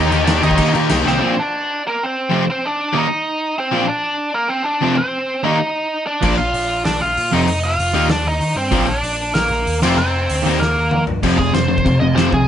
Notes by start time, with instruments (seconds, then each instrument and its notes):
Already playing: overdriven electric guitar D#3 A#3 D#4 G4, lead electric guitar D#4 D#5
0.11 picked electric bass D#2, overdriven electric guitar D#3 A#3 D#4 G4, crash
0.25 picked electric bass D#2, overdriven electric guitar D#3 A#3 D#4 G4, lead electric guitar D4 D5, snare, crash
0.41 picked electric bass D#2, overdriven electric guitar D#3 A#3 D#4 G4, lead electric guitar D#4 D#5, crash
0.51 kick
0.56 overdriven electric guitar D#3 A#3 D#4 G4, picked electric bass D#3, kick, crash
0.73 picked electric bass A#2, overdriven electric guitar D#3 A#3 D#4 G4, crash
0.89 picked electric bass C2, overdriven electric guitar D#3 A#3 D#4 G4, snare, crash
1.04 picked electric bass C2, overdriven electric guitar D#3 A#3 D#4 G4, lead electric guitar C4, snare
1.10 lead electric guitar C5
1.19 overdriven electric guitar A#2 F3 A#3 D4 F4
1.39 lead electric guitar D4 D5
1.87 lead electric guitar A#3 A#4
2.03 lead electric guitar C4 C5
2.29 overdriven electric guitar F2 C3 F3 A3 C4 F4
2.50 lead electric guitar C4 C5
2.66 lead electric guitar D4 D5
2.93 overdriven electric guitar D#3 G3 A#3 D#4
2.98 lead electric guitar D#4 D#5
3.58 lead electric guitar C4 C5
3.72 overdriven electric guitar A#2 F3 A#3 D4
3.88 lead electric guitar D4 D5
4.34 lead electric guitar A#3 A#4
4.49 lead electric guitar C4 C5
4.64 lead electric guitar D4 D5
4.81 overdriven electric guitar F2 C3 F3 A3 C4
4.96 lead electric guitar C4 C5
5.44 overdriven electric guitar D#3 G3 A#3 D#4, lead electric guitar D#4 D#5
6.07 lead electric guitar D4 D5
6.22 picked electric bass A#1, overdriven electric guitar A#2 F3 A#3 D4, kick, crash
6.37 lead electric guitar F4 F5
6.54 picked electric bass A#1, open hi-hat
6.85 picked electric bass A#1, lead electric guitar D4 D5, snare, open hi-hat
7.01 picked electric bass A#1, lead electric guitar F4 F5
7.17 picked electric bass A#2, open hi-hat
7.32 picked electric bass F1, overdriven electric guitar F2 C3 F3 A3 C4, lead electric guitar D#4 D#5
7.47 picked electric bass F1, open hi-hat
7.63 lead electric guitar F4 F5
7.79 picked electric bass F1, open hi-hat
7.94 picked electric bass D#2, overdriven electric guitar D#3 G3 A#3 D#4
8.09 picked electric bass D#2, lead electric guitar D4 D5, snare, open hi-hat
8.25 picked electric bass D#2, lead electric guitar D#4 D#5
8.40 picked electric bass D#3, open hi-hat
8.56 picked electric bass G2, lead electric guitar C4 C5
8.72 picked electric bass A#1, overdriven electric guitar A#2 F3 A#3 D4, kick, open hi-hat
8.87 lead electric guitar D4 D5
9.03 picked electric bass A#1, open hi-hat
9.34 picked electric bass A#1, lead electric guitar A#3 A#4, snare, open hi-hat
9.51 picked electric bass A#1
9.67 picked electric bass D#2, open hi-hat
9.82 picked electric bass F1, overdriven electric guitar F2 C3 F3 A3 C4, lead electric guitar C4 C5, crash
9.98 picked electric bass F1, lead electric guitar C4 C5
10.30 picked electric bass D2, open hi-hat
10.45 picked electric bass D#2, overdriven electric guitar D#3 G3 A#3 D#4
10.59 picked electric bass D#2, lead electric guitar A#3 A#4, snare
10.76 picked electric bass D#2
10.91 picked electric bass D#3, mid tom
11.07 picked electric bass G2, floor tom
11.23 picked electric bass F1, overdriven electric guitar F2 C3 F3, kick, crash
11.38 picked electric bass F1, overdriven electric guitar F2 C3, lead electric guitar G#4, kick
11.53 picked electric bass F1, overdriven electric guitar F2 C3, lead electric guitar C5, snare, crash
11.68 overdriven electric guitar F2 C3
11.78 kick
11.85 picked electric bass F1, overdriven electric guitar F2 C3, kick, crash
12.00 picked electric bass F1, overdriven electric guitar F2 C3, lead electric guitar D#5
12.15 picked electric bass F1, overdriven electric guitar F2 C3 F3, lead electric guitar C5, snare, crash
12.32 picked electric bass C2, overdriven electric guitar F2 C3, lead electric guitar G#4, kick